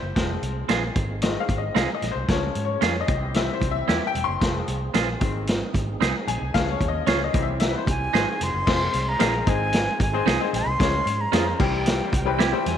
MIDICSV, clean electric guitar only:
0, 0, Header, 1, 2, 480
1, 0, Start_track
1, 0, Tempo, 531444
1, 148, Time_signature, 4, 2, 24, 8
1, 11541, End_track
2, 0, Start_track
2, 0, Title_t, "Clean electric guitar"
2, 0, Program_c, 0, 27
2, 620, Note_on_c, 0, 60, 86
2, 626, Note_on_c, 0, 65, 99
2, 636, Note_on_c, 0, 68, 97
2, 739, Note_off_c, 0, 60, 0
2, 742, Note_off_c, 0, 65, 0
2, 747, Note_off_c, 0, 68, 0
2, 1579, Note_on_c, 0, 60, 93
2, 1588, Note_on_c, 0, 63, 94
2, 1595, Note_on_c, 0, 68, 106
2, 1699, Note_off_c, 0, 60, 0
2, 1703, Note_off_c, 0, 63, 0
2, 1707, Note_off_c, 0, 68, 0
2, 2539, Note_on_c, 0, 61, 84
2, 2550, Note_on_c, 0, 65, 83
2, 2552, Note_on_c, 0, 68, 93
2, 2659, Note_off_c, 0, 61, 0
2, 2665, Note_off_c, 0, 65, 0
2, 2666, Note_off_c, 0, 68, 0
2, 3503, Note_on_c, 0, 60, 78
2, 3508, Note_on_c, 0, 64, 83
2, 3515, Note_on_c, 0, 67, 94
2, 3621, Note_off_c, 0, 60, 0
2, 3624, Note_off_c, 0, 64, 0
2, 3628, Note_off_c, 0, 67, 0
2, 4461, Note_on_c, 0, 60, 83
2, 4468, Note_on_c, 0, 65, 86
2, 4473, Note_on_c, 0, 68, 91
2, 4581, Note_off_c, 0, 60, 0
2, 4585, Note_off_c, 0, 65, 0
2, 4587, Note_off_c, 0, 68, 0
2, 5425, Note_on_c, 0, 60, 85
2, 5431, Note_on_c, 0, 63, 96
2, 5439, Note_on_c, 0, 68, 96
2, 5543, Note_off_c, 0, 60, 0
2, 5547, Note_off_c, 0, 63, 0
2, 5551, Note_off_c, 0, 68, 0
2, 6385, Note_on_c, 0, 61, 83
2, 6395, Note_on_c, 0, 65, 100
2, 6398, Note_on_c, 0, 68, 96
2, 6504, Note_off_c, 0, 61, 0
2, 6509, Note_off_c, 0, 65, 0
2, 6511, Note_off_c, 0, 68, 0
2, 7347, Note_on_c, 0, 63, 94
2, 7353, Note_on_c, 0, 68, 101
2, 7359, Note_on_c, 0, 72, 93
2, 7465, Note_off_c, 0, 63, 0
2, 7468, Note_off_c, 0, 68, 0
2, 7471, Note_off_c, 0, 72, 0
2, 8306, Note_on_c, 0, 60, 86
2, 8314, Note_on_c, 0, 65, 78
2, 8317, Note_on_c, 0, 68, 89
2, 8425, Note_off_c, 0, 60, 0
2, 8429, Note_off_c, 0, 65, 0
2, 8430, Note_off_c, 0, 68, 0
2, 9266, Note_on_c, 0, 60, 90
2, 9274, Note_on_c, 0, 63, 99
2, 9282, Note_on_c, 0, 68, 109
2, 9385, Note_off_c, 0, 60, 0
2, 9388, Note_off_c, 0, 63, 0
2, 9392, Note_off_c, 0, 68, 0
2, 10225, Note_on_c, 0, 61, 82
2, 10233, Note_on_c, 0, 65, 92
2, 10239, Note_on_c, 0, 68, 96
2, 10344, Note_off_c, 0, 61, 0
2, 10348, Note_off_c, 0, 65, 0
2, 10351, Note_off_c, 0, 68, 0
2, 11187, Note_on_c, 0, 60, 94
2, 11193, Note_on_c, 0, 64, 93
2, 11202, Note_on_c, 0, 67, 99
2, 11305, Note_off_c, 0, 60, 0
2, 11308, Note_off_c, 0, 64, 0
2, 11312, Note_off_c, 0, 67, 0
2, 11541, End_track
0, 0, End_of_file